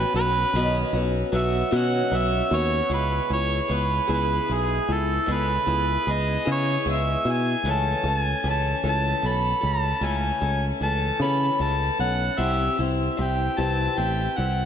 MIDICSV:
0, 0, Header, 1, 4, 480
1, 0, Start_track
1, 0, Tempo, 789474
1, 328, Time_signature, 6, 3, 24, 8
1, 8909, End_track
2, 0, Start_track
2, 0, Title_t, "Harmonica"
2, 0, Program_c, 0, 22
2, 0, Note_on_c, 0, 71, 98
2, 83, Note_off_c, 0, 71, 0
2, 96, Note_on_c, 0, 71, 113
2, 464, Note_off_c, 0, 71, 0
2, 823, Note_on_c, 0, 76, 84
2, 1071, Note_on_c, 0, 78, 95
2, 1080, Note_off_c, 0, 76, 0
2, 1314, Note_on_c, 0, 76, 90
2, 1323, Note_off_c, 0, 78, 0
2, 1553, Note_on_c, 0, 73, 95
2, 1562, Note_off_c, 0, 76, 0
2, 1781, Note_off_c, 0, 73, 0
2, 1786, Note_on_c, 0, 71, 76
2, 2001, Note_off_c, 0, 71, 0
2, 2026, Note_on_c, 0, 73, 85
2, 2266, Note_on_c, 0, 71, 82
2, 2275, Note_off_c, 0, 73, 0
2, 2498, Note_off_c, 0, 71, 0
2, 2514, Note_on_c, 0, 71, 77
2, 2752, Note_on_c, 0, 68, 83
2, 2761, Note_off_c, 0, 71, 0
2, 2994, Note_on_c, 0, 69, 89
2, 3003, Note_off_c, 0, 68, 0
2, 3236, Note_on_c, 0, 71, 88
2, 3245, Note_off_c, 0, 69, 0
2, 3721, Note_on_c, 0, 75, 91
2, 3730, Note_off_c, 0, 71, 0
2, 3946, Note_off_c, 0, 75, 0
2, 3963, Note_on_c, 0, 73, 97
2, 4171, Note_off_c, 0, 73, 0
2, 4201, Note_on_c, 0, 76, 91
2, 4449, Note_on_c, 0, 80, 103
2, 4458, Note_off_c, 0, 76, 0
2, 4684, Note_on_c, 0, 81, 98
2, 4693, Note_off_c, 0, 80, 0
2, 4926, Note_on_c, 0, 80, 100
2, 4935, Note_off_c, 0, 81, 0
2, 5149, Note_off_c, 0, 80, 0
2, 5169, Note_on_c, 0, 81, 95
2, 5375, Note_off_c, 0, 81, 0
2, 5403, Note_on_c, 0, 81, 106
2, 5635, Note_on_c, 0, 83, 108
2, 5644, Note_off_c, 0, 81, 0
2, 5885, Note_on_c, 0, 81, 97
2, 5895, Note_off_c, 0, 83, 0
2, 6107, Note_on_c, 0, 80, 98
2, 6116, Note_off_c, 0, 81, 0
2, 6481, Note_off_c, 0, 80, 0
2, 6584, Note_on_c, 0, 81, 95
2, 6802, Note_off_c, 0, 81, 0
2, 6819, Note_on_c, 0, 83, 102
2, 7039, Note_off_c, 0, 83, 0
2, 7059, Note_on_c, 0, 81, 91
2, 7280, Note_off_c, 0, 81, 0
2, 7295, Note_on_c, 0, 78, 98
2, 7531, Note_on_c, 0, 76, 86
2, 7540, Note_off_c, 0, 78, 0
2, 7772, Note_off_c, 0, 76, 0
2, 8032, Note_on_c, 0, 79, 91
2, 8268, Note_on_c, 0, 81, 101
2, 8277, Note_off_c, 0, 79, 0
2, 8502, Note_on_c, 0, 79, 90
2, 8512, Note_off_c, 0, 81, 0
2, 8738, Note_on_c, 0, 78, 78
2, 8747, Note_off_c, 0, 79, 0
2, 8909, Note_off_c, 0, 78, 0
2, 8909, End_track
3, 0, Start_track
3, 0, Title_t, "Steel-string acoustic guitar"
3, 0, Program_c, 1, 25
3, 0, Note_on_c, 1, 54, 65
3, 0, Note_on_c, 1, 59, 59
3, 0, Note_on_c, 1, 61, 59
3, 0, Note_on_c, 1, 66, 68
3, 80, Note_off_c, 1, 66, 0
3, 84, Note_off_c, 1, 61, 0
3, 87, Note_on_c, 1, 66, 58
3, 89, Note_off_c, 1, 54, 0
3, 89, Note_off_c, 1, 59, 0
3, 92, Note_on_c, 1, 61, 52
3, 96, Note_on_c, 1, 59, 50
3, 104, Note_on_c, 1, 54, 44
3, 327, Note_off_c, 1, 66, 0
3, 330, Note_off_c, 1, 61, 0
3, 332, Note_off_c, 1, 59, 0
3, 334, Note_off_c, 1, 54, 0
3, 336, Note_on_c, 1, 47, 82
3, 337, Note_on_c, 1, 51, 85
3, 340, Note_on_c, 1, 59, 81
3, 341, Note_on_c, 1, 54, 82
3, 343, Note_on_c, 1, 61, 85
3, 350, Note_on_c, 1, 66, 84
3, 559, Note_off_c, 1, 66, 0
3, 566, Note_off_c, 1, 61, 0
3, 566, Note_on_c, 1, 66, 58
3, 569, Note_off_c, 1, 59, 0
3, 572, Note_off_c, 1, 47, 0
3, 572, Note_off_c, 1, 51, 0
3, 573, Note_off_c, 1, 54, 0
3, 573, Note_on_c, 1, 61, 57
3, 576, Note_on_c, 1, 59, 51
3, 580, Note_on_c, 1, 54, 49
3, 795, Note_off_c, 1, 54, 0
3, 801, Note_off_c, 1, 59, 0
3, 802, Note_on_c, 1, 54, 84
3, 806, Note_off_c, 1, 61, 0
3, 807, Note_off_c, 1, 66, 0
3, 809, Note_on_c, 1, 59, 73
3, 813, Note_on_c, 1, 61, 78
3, 820, Note_on_c, 1, 66, 77
3, 1032, Note_off_c, 1, 66, 0
3, 1039, Note_on_c, 1, 66, 83
3, 1040, Note_off_c, 1, 59, 0
3, 1040, Note_off_c, 1, 61, 0
3, 1045, Note_off_c, 1, 54, 0
3, 1047, Note_on_c, 1, 59, 77
3, 1047, Note_on_c, 1, 61, 81
3, 1052, Note_on_c, 1, 54, 79
3, 1053, Note_on_c, 1, 51, 73
3, 1055, Note_on_c, 1, 47, 62
3, 1278, Note_off_c, 1, 54, 0
3, 1284, Note_off_c, 1, 59, 0
3, 1284, Note_off_c, 1, 66, 0
3, 1285, Note_on_c, 1, 54, 63
3, 1288, Note_off_c, 1, 61, 0
3, 1291, Note_off_c, 1, 51, 0
3, 1291, Note_on_c, 1, 59, 62
3, 1292, Note_off_c, 1, 47, 0
3, 1299, Note_on_c, 1, 61, 73
3, 1305, Note_on_c, 1, 66, 69
3, 1518, Note_off_c, 1, 66, 0
3, 1523, Note_off_c, 1, 61, 0
3, 1525, Note_on_c, 1, 66, 65
3, 1527, Note_off_c, 1, 54, 0
3, 1530, Note_off_c, 1, 59, 0
3, 1531, Note_on_c, 1, 61, 61
3, 1537, Note_on_c, 1, 59, 60
3, 1543, Note_on_c, 1, 54, 52
3, 1760, Note_on_c, 1, 49, 68
3, 1761, Note_off_c, 1, 59, 0
3, 1762, Note_off_c, 1, 54, 0
3, 1764, Note_on_c, 1, 56, 67
3, 1765, Note_off_c, 1, 61, 0
3, 1767, Note_off_c, 1, 66, 0
3, 1768, Note_on_c, 1, 59, 67
3, 1768, Note_on_c, 1, 64, 73
3, 1774, Note_on_c, 1, 68, 75
3, 1997, Note_off_c, 1, 68, 0
3, 2004, Note_off_c, 1, 49, 0
3, 2004, Note_off_c, 1, 64, 0
3, 2004, Note_on_c, 1, 68, 51
3, 2007, Note_off_c, 1, 56, 0
3, 2008, Note_off_c, 1, 59, 0
3, 2011, Note_on_c, 1, 64, 52
3, 2020, Note_on_c, 1, 59, 42
3, 2238, Note_on_c, 1, 56, 59
3, 2242, Note_off_c, 1, 59, 0
3, 2247, Note_off_c, 1, 64, 0
3, 2247, Note_off_c, 1, 68, 0
3, 2249, Note_on_c, 1, 59, 62
3, 2254, Note_on_c, 1, 64, 58
3, 2259, Note_on_c, 1, 68, 62
3, 2469, Note_off_c, 1, 68, 0
3, 2476, Note_on_c, 1, 68, 73
3, 2477, Note_off_c, 1, 64, 0
3, 2481, Note_off_c, 1, 56, 0
3, 2481, Note_off_c, 1, 59, 0
3, 2484, Note_on_c, 1, 64, 59
3, 2488, Note_on_c, 1, 56, 56
3, 2489, Note_on_c, 1, 59, 61
3, 2490, Note_on_c, 1, 49, 52
3, 2720, Note_off_c, 1, 56, 0
3, 2723, Note_off_c, 1, 68, 0
3, 2727, Note_off_c, 1, 64, 0
3, 2727, Note_on_c, 1, 56, 53
3, 2729, Note_off_c, 1, 59, 0
3, 2730, Note_off_c, 1, 49, 0
3, 2738, Note_on_c, 1, 59, 48
3, 2739, Note_on_c, 1, 64, 58
3, 2747, Note_on_c, 1, 68, 56
3, 2964, Note_off_c, 1, 64, 0
3, 2969, Note_off_c, 1, 56, 0
3, 2971, Note_on_c, 1, 64, 55
3, 2974, Note_off_c, 1, 59, 0
3, 2978, Note_off_c, 1, 68, 0
3, 2981, Note_on_c, 1, 59, 45
3, 3199, Note_on_c, 1, 49, 77
3, 3204, Note_off_c, 1, 59, 0
3, 3204, Note_on_c, 1, 56, 70
3, 3207, Note_off_c, 1, 64, 0
3, 3211, Note_on_c, 1, 59, 72
3, 3214, Note_on_c, 1, 64, 73
3, 3214, Note_on_c, 1, 68, 75
3, 3435, Note_off_c, 1, 68, 0
3, 3440, Note_off_c, 1, 64, 0
3, 3442, Note_on_c, 1, 68, 53
3, 3445, Note_off_c, 1, 49, 0
3, 3446, Note_off_c, 1, 59, 0
3, 3447, Note_off_c, 1, 56, 0
3, 3448, Note_on_c, 1, 64, 49
3, 3453, Note_on_c, 1, 59, 45
3, 3679, Note_off_c, 1, 59, 0
3, 3679, Note_on_c, 1, 56, 53
3, 3684, Note_off_c, 1, 64, 0
3, 3686, Note_off_c, 1, 68, 0
3, 3687, Note_on_c, 1, 59, 60
3, 3691, Note_on_c, 1, 64, 65
3, 3696, Note_on_c, 1, 68, 70
3, 3914, Note_off_c, 1, 68, 0
3, 3917, Note_off_c, 1, 64, 0
3, 3921, Note_off_c, 1, 56, 0
3, 3921, Note_off_c, 1, 59, 0
3, 3922, Note_on_c, 1, 68, 68
3, 3924, Note_on_c, 1, 64, 68
3, 3928, Note_on_c, 1, 59, 63
3, 3929, Note_on_c, 1, 56, 52
3, 3934, Note_on_c, 1, 49, 57
3, 4161, Note_off_c, 1, 56, 0
3, 4166, Note_off_c, 1, 59, 0
3, 4166, Note_off_c, 1, 68, 0
3, 4167, Note_off_c, 1, 64, 0
3, 4169, Note_on_c, 1, 56, 63
3, 4173, Note_off_c, 1, 49, 0
3, 4173, Note_on_c, 1, 59, 64
3, 4180, Note_on_c, 1, 64, 58
3, 4185, Note_on_c, 1, 68, 66
3, 4398, Note_off_c, 1, 68, 0
3, 4405, Note_on_c, 1, 68, 61
3, 4410, Note_off_c, 1, 56, 0
3, 4410, Note_off_c, 1, 64, 0
3, 4412, Note_off_c, 1, 59, 0
3, 4417, Note_on_c, 1, 64, 52
3, 4427, Note_on_c, 1, 59, 44
3, 4649, Note_off_c, 1, 68, 0
3, 4651, Note_on_c, 1, 49, 78
3, 4651, Note_on_c, 1, 52, 82
3, 4652, Note_off_c, 1, 59, 0
3, 4654, Note_off_c, 1, 64, 0
3, 4655, Note_on_c, 1, 57, 77
3, 4662, Note_on_c, 1, 61, 88
3, 4664, Note_on_c, 1, 69, 76
3, 4886, Note_off_c, 1, 69, 0
3, 4891, Note_off_c, 1, 52, 0
3, 4892, Note_off_c, 1, 49, 0
3, 4893, Note_off_c, 1, 57, 0
3, 4893, Note_on_c, 1, 69, 56
3, 4897, Note_off_c, 1, 61, 0
3, 4903, Note_on_c, 1, 61, 47
3, 4908, Note_on_c, 1, 57, 44
3, 5129, Note_off_c, 1, 57, 0
3, 5131, Note_on_c, 1, 52, 62
3, 5133, Note_off_c, 1, 69, 0
3, 5136, Note_on_c, 1, 57, 60
3, 5138, Note_off_c, 1, 61, 0
3, 5147, Note_on_c, 1, 61, 59
3, 5149, Note_on_c, 1, 69, 67
3, 5366, Note_off_c, 1, 69, 0
3, 5369, Note_off_c, 1, 61, 0
3, 5372, Note_off_c, 1, 52, 0
3, 5373, Note_on_c, 1, 69, 63
3, 5374, Note_off_c, 1, 57, 0
3, 5376, Note_on_c, 1, 61, 62
3, 5380, Note_on_c, 1, 52, 57
3, 5381, Note_on_c, 1, 57, 63
3, 5389, Note_on_c, 1, 49, 54
3, 5602, Note_off_c, 1, 52, 0
3, 5609, Note_on_c, 1, 52, 53
3, 5610, Note_off_c, 1, 57, 0
3, 5613, Note_off_c, 1, 69, 0
3, 5614, Note_off_c, 1, 61, 0
3, 5618, Note_on_c, 1, 57, 60
3, 5621, Note_off_c, 1, 49, 0
3, 5624, Note_on_c, 1, 61, 53
3, 5627, Note_on_c, 1, 69, 69
3, 5835, Note_off_c, 1, 69, 0
3, 5842, Note_on_c, 1, 69, 60
3, 5849, Note_off_c, 1, 61, 0
3, 5851, Note_off_c, 1, 52, 0
3, 5855, Note_off_c, 1, 57, 0
3, 5856, Note_on_c, 1, 61, 42
3, 5862, Note_on_c, 1, 57, 48
3, 6087, Note_off_c, 1, 69, 0
3, 6089, Note_on_c, 1, 49, 80
3, 6094, Note_off_c, 1, 57, 0
3, 6094, Note_off_c, 1, 61, 0
3, 6096, Note_on_c, 1, 52, 79
3, 6101, Note_on_c, 1, 57, 79
3, 6105, Note_on_c, 1, 61, 73
3, 6106, Note_on_c, 1, 69, 71
3, 6323, Note_off_c, 1, 69, 0
3, 6330, Note_on_c, 1, 69, 46
3, 6331, Note_off_c, 1, 49, 0
3, 6333, Note_off_c, 1, 61, 0
3, 6335, Note_off_c, 1, 52, 0
3, 6337, Note_off_c, 1, 57, 0
3, 6341, Note_on_c, 1, 61, 47
3, 6348, Note_on_c, 1, 57, 47
3, 6572, Note_off_c, 1, 69, 0
3, 6573, Note_off_c, 1, 57, 0
3, 6574, Note_on_c, 1, 52, 55
3, 6577, Note_off_c, 1, 61, 0
3, 6581, Note_on_c, 1, 57, 59
3, 6585, Note_on_c, 1, 61, 70
3, 6590, Note_on_c, 1, 69, 65
3, 6809, Note_off_c, 1, 69, 0
3, 6814, Note_off_c, 1, 52, 0
3, 6814, Note_off_c, 1, 57, 0
3, 6816, Note_off_c, 1, 61, 0
3, 6816, Note_on_c, 1, 69, 68
3, 6822, Note_on_c, 1, 57, 60
3, 6823, Note_on_c, 1, 61, 75
3, 6826, Note_on_c, 1, 52, 60
3, 6828, Note_on_c, 1, 49, 62
3, 7041, Note_off_c, 1, 52, 0
3, 7048, Note_off_c, 1, 57, 0
3, 7049, Note_on_c, 1, 52, 52
3, 7053, Note_off_c, 1, 61, 0
3, 7055, Note_off_c, 1, 69, 0
3, 7055, Note_on_c, 1, 57, 64
3, 7060, Note_on_c, 1, 61, 62
3, 7061, Note_off_c, 1, 49, 0
3, 7069, Note_on_c, 1, 69, 63
3, 7285, Note_off_c, 1, 69, 0
3, 7291, Note_off_c, 1, 52, 0
3, 7292, Note_off_c, 1, 61, 0
3, 7292, Note_on_c, 1, 69, 54
3, 7294, Note_off_c, 1, 57, 0
3, 7299, Note_on_c, 1, 61, 49
3, 7310, Note_on_c, 1, 57, 43
3, 7525, Note_on_c, 1, 48, 75
3, 7526, Note_off_c, 1, 57, 0
3, 7526, Note_on_c, 1, 52, 69
3, 7529, Note_off_c, 1, 61, 0
3, 7529, Note_on_c, 1, 60, 83
3, 7531, Note_off_c, 1, 69, 0
3, 7531, Note_on_c, 1, 64, 69
3, 7533, Note_on_c, 1, 67, 79
3, 7764, Note_off_c, 1, 67, 0
3, 7768, Note_off_c, 1, 64, 0
3, 7769, Note_off_c, 1, 48, 0
3, 7770, Note_off_c, 1, 52, 0
3, 7771, Note_off_c, 1, 60, 0
3, 7772, Note_on_c, 1, 67, 50
3, 7775, Note_on_c, 1, 64, 51
3, 7786, Note_on_c, 1, 60, 50
3, 8000, Note_off_c, 1, 60, 0
3, 8005, Note_on_c, 1, 52, 62
3, 8006, Note_off_c, 1, 64, 0
3, 8007, Note_on_c, 1, 60, 65
3, 8009, Note_off_c, 1, 67, 0
3, 8014, Note_on_c, 1, 64, 63
3, 8016, Note_on_c, 1, 67, 62
3, 8246, Note_off_c, 1, 67, 0
3, 8249, Note_off_c, 1, 52, 0
3, 8250, Note_off_c, 1, 60, 0
3, 8250, Note_off_c, 1, 64, 0
3, 8253, Note_on_c, 1, 67, 71
3, 8257, Note_on_c, 1, 64, 69
3, 8258, Note_on_c, 1, 60, 60
3, 8264, Note_on_c, 1, 48, 63
3, 8265, Note_on_c, 1, 52, 63
3, 8483, Note_off_c, 1, 52, 0
3, 8490, Note_on_c, 1, 52, 56
3, 8492, Note_off_c, 1, 60, 0
3, 8493, Note_off_c, 1, 67, 0
3, 8495, Note_off_c, 1, 64, 0
3, 8498, Note_off_c, 1, 48, 0
3, 8499, Note_on_c, 1, 60, 58
3, 8504, Note_on_c, 1, 64, 50
3, 8507, Note_on_c, 1, 67, 63
3, 8727, Note_off_c, 1, 67, 0
3, 8731, Note_off_c, 1, 52, 0
3, 8732, Note_off_c, 1, 64, 0
3, 8734, Note_on_c, 1, 67, 54
3, 8736, Note_off_c, 1, 60, 0
3, 8740, Note_on_c, 1, 64, 49
3, 8746, Note_on_c, 1, 60, 40
3, 8909, Note_off_c, 1, 60, 0
3, 8909, Note_off_c, 1, 64, 0
3, 8909, Note_off_c, 1, 67, 0
3, 8909, End_track
4, 0, Start_track
4, 0, Title_t, "Picked electric bass"
4, 0, Program_c, 2, 34
4, 85, Note_on_c, 2, 35, 79
4, 261, Note_off_c, 2, 35, 0
4, 325, Note_on_c, 2, 35, 83
4, 501, Note_off_c, 2, 35, 0
4, 564, Note_on_c, 2, 35, 92
4, 740, Note_off_c, 2, 35, 0
4, 805, Note_on_c, 2, 35, 92
4, 981, Note_off_c, 2, 35, 0
4, 1047, Note_on_c, 2, 47, 92
4, 1223, Note_off_c, 2, 47, 0
4, 1285, Note_on_c, 2, 35, 76
4, 1461, Note_off_c, 2, 35, 0
4, 1527, Note_on_c, 2, 39, 89
4, 1703, Note_off_c, 2, 39, 0
4, 1760, Note_on_c, 2, 37, 81
4, 1938, Note_off_c, 2, 37, 0
4, 2007, Note_on_c, 2, 37, 83
4, 2183, Note_off_c, 2, 37, 0
4, 2246, Note_on_c, 2, 37, 77
4, 2422, Note_off_c, 2, 37, 0
4, 2485, Note_on_c, 2, 37, 84
4, 2662, Note_off_c, 2, 37, 0
4, 2731, Note_on_c, 2, 35, 75
4, 2906, Note_off_c, 2, 35, 0
4, 2969, Note_on_c, 2, 37, 83
4, 3145, Note_off_c, 2, 37, 0
4, 3209, Note_on_c, 2, 37, 87
4, 3384, Note_off_c, 2, 37, 0
4, 3445, Note_on_c, 2, 37, 85
4, 3622, Note_off_c, 2, 37, 0
4, 3689, Note_on_c, 2, 37, 81
4, 3865, Note_off_c, 2, 37, 0
4, 3933, Note_on_c, 2, 49, 81
4, 4108, Note_off_c, 2, 49, 0
4, 4168, Note_on_c, 2, 37, 84
4, 4345, Note_off_c, 2, 37, 0
4, 4407, Note_on_c, 2, 47, 82
4, 4584, Note_off_c, 2, 47, 0
4, 4642, Note_on_c, 2, 37, 80
4, 4821, Note_off_c, 2, 37, 0
4, 4885, Note_on_c, 2, 37, 83
4, 5063, Note_off_c, 2, 37, 0
4, 5130, Note_on_c, 2, 37, 83
4, 5306, Note_off_c, 2, 37, 0
4, 5371, Note_on_c, 2, 37, 93
4, 5547, Note_off_c, 2, 37, 0
4, 5611, Note_on_c, 2, 35, 72
4, 5787, Note_off_c, 2, 35, 0
4, 5855, Note_on_c, 2, 37, 84
4, 6030, Note_off_c, 2, 37, 0
4, 6086, Note_on_c, 2, 37, 83
4, 6264, Note_off_c, 2, 37, 0
4, 6333, Note_on_c, 2, 37, 92
4, 6508, Note_off_c, 2, 37, 0
4, 6570, Note_on_c, 2, 37, 81
4, 6746, Note_off_c, 2, 37, 0
4, 6807, Note_on_c, 2, 49, 86
4, 6984, Note_off_c, 2, 49, 0
4, 7051, Note_on_c, 2, 37, 82
4, 7227, Note_off_c, 2, 37, 0
4, 7291, Note_on_c, 2, 35, 79
4, 7467, Note_off_c, 2, 35, 0
4, 7528, Note_on_c, 2, 36, 86
4, 7705, Note_off_c, 2, 36, 0
4, 7774, Note_on_c, 2, 36, 82
4, 7949, Note_off_c, 2, 36, 0
4, 8017, Note_on_c, 2, 36, 88
4, 8191, Note_off_c, 2, 36, 0
4, 8257, Note_on_c, 2, 36, 83
4, 8431, Note_off_c, 2, 36, 0
4, 8497, Note_on_c, 2, 33, 76
4, 8671, Note_off_c, 2, 33, 0
4, 8743, Note_on_c, 2, 36, 86
4, 8909, Note_off_c, 2, 36, 0
4, 8909, End_track
0, 0, End_of_file